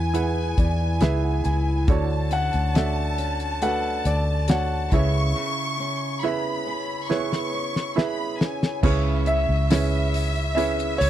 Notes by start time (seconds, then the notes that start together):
Already playing: E2 E3 B3 E4 G#4 B4 E5 F#5 G#5
0.14 B3 E4 G#4 B4 F#5, closed hi-hat
0.57 E2 E4 D5, kick, closed hi-hat
1.01 C#2 B3 E4 G#4 B4 E5, snare, closed hi-hat
1.24 F#5
1.44 C#2 E4 G#5, closed hi-hat
1.87 D2 D3 D4 F#4 A4 C#5 A5, kick, closed hi-hat
2.31 C#4 F#5, closed hi-hat
2.53 D2, closed hi-hat
2.75 A3 D4 F#4 A4 E5, snare, closed hi-hat
3.18 C#4, closed hi-hat
3.40 closed hi-hat
3.62 A3 D4 F#4 A4 B4 F#5, closed hi-hat
4.05 D2 D5, closed hi-hat
4.48 A3 D4 F#4 A4 C#5 F#5, snare, closed hi-hat
4.91 C#2 C#3 E4 G#4 B4 C#5 E5 C#6, kick, closed hi-hat
5.36 C#3
5.80 C#4
6.23 B3 E4 G#4 B4 E5 B5
6.67 C#4
7.09 B3 E4 G#4 B4 C#5 C#6, snare
7.33 snare
7.53 C#4
7.76 snare
7.96 B3 E4 G#4 B4 E5 B5, snare
8.40 C#4 G#5, snare
8.63 snare
8.83 C#2 C#3 C#4 E4 G#4 B4 C#5 E5, kick, crash
9.26 E5, hi-hat pedal, open hi-hat
9.49 C#2
9.70 C#4 E4 G#4 B4 C#5, snare, hi-hat pedal, open hi-hat
10.14 hi-hat pedal, open hi-hat
10.36 open hi-hat
10.55 C#4 E4 G#4 B4 C#5 E5, hi-hat pedal, open hi-hat
10.79 hi-hat pedal
10.98 C#2 C#5, hi-hat pedal, open hi-hat